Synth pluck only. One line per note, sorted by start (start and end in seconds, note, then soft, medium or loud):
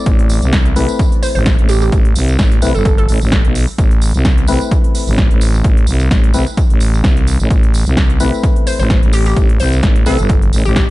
1.23 1.31 C5 medium
1.35 1.42 C5 medium
1.69 1.77 G4 medium
1.82 1.89 G4 medium
2.75 2.82 A4 medium
2.85 2.93 A4 medium
2.98 3.32 A4 medium
8.67 8.75 C5 medium
8.80 8.86 C5 medium
9.13 9.22 G4 medium
9.26 9.33 G4 medium
9.60 9.78 C5 medium
10.06 10.25 A4 medium
10.65 10.72 G4 medium
10.76 10.84 G4 medium